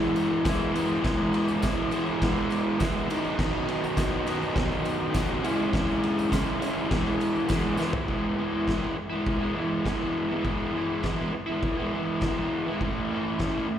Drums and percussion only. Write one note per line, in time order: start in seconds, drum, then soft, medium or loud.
0.02 tambourine soft
0.16 ride medium
0.16 tambourine medium
0.45 kick loud
0.45 snare loud
0.45 ride loud
0.45 tambourine loud
0.61 tambourine soft
0.75 ride medium
0.75 tambourine medium
0.90 tambourine soft
1.04 kick loud
1.04 snare loud
1.04 ride loud
1.04 tambourine soft
1.33 ride medium
1.33 tambourine soft
1.48 tambourine medium
1.62 kick loud
1.62 snare loud
1.62 ride loud
1.62 tambourine loud
1.91 ride medium
1.91 tambourine medium
2.06 tambourine soft
2.21 kick loud
2.21 snare loud
2.21 ride loud
2.21 tambourine soft
2.36 tambourine soft
2.50 ride medium
2.50 tambourine medium
2.80 kick loud
2.80 snare loud
2.80 ride loud
2.80 tambourine loud
2.95 tambourine soft
3.10 ride medium
3.10 tambourine medium
3.24 tambourine soft
3.39 kick loud
3.39 snare loud
3.39 tambourine soft
3.39 crash loud
3.68 ride medium
3.68 tambourine soft
3.84 tambourine medium
3.97 kick loud
3.97 snare loud
3.97 ride loud
3.97 tambourine loud
4.27 ride medium
4.27 tambourine medium
4.42 tambourine soft
4.56 kick loud
4.56 snare loud
4.56 ride loud
4.56 tambourine soft
4.72 tambourine soft
4.85 ride medium
4.85 tambourine medium
5.14 kick loud
5.14 snare loud
5.14 ride loud
5.14 tambourine loud
5.29 tambourine soft
5.44 ride medium
5.44 tambourine medium
5.59 tambourine soft
5.73 kick loud
5.73 snare loud
5.73 ride loud
5.73 tambourine soft
5.88 tambourine soft
6.03 ride medium
6.03 tambourine soft
6.19 tambourine medium
6.32 kick loud
6.32 snare loud
6.32 ride loud
6.32 tambourine loud
6.62 ride medium
6.62 tambourine medium
6.78 tambourine soft
6.91 kick loud
6.91 snare loud
6.91 ride loud
6.91 tambourine soft
7.07 tambourine soft
7.20 ride medium
7.20 tambourine medium
7.35 tambourine soft
7.49 kick loud
7.49 snare loud
7.49 ride loud
7.49 tambourine loud
7.64 tambourine soft
7.77 snare medium
7.77 tambourine medium
7.92 floor tom medium
7.92 tambourine soft
8.08 kick medium
8.08 crash medium
8.68 kick loud
8.68 snare loud
8.68 crash soft
9.26 kick loud
9.26 crash medium
9.85 kick loud
9.85 snare loud
9.85 crash soft
10.44 kick loud
10.44 crash medium
11.03 kick loud
11.03 snare loud
11.03 crash medium
11.62 kick loud
11.62 crash medium
12.21 kick loud
12.21 snare loud
12.21 crash medium
12.81 kick loud
12.81 crash medium
13.39 kick medium
13.39 snare loud
13.39 crash medium